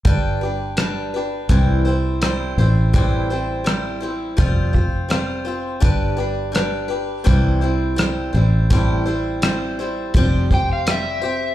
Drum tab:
HH |x-x-x-x-|x-x-x-x-|x-x-x-x-|x-x-x-x-|
SD |--r---r-|--r---r-|--r---r-|--r---r-|
BD |o---o---|o---oo--|o---o---|o---oo--|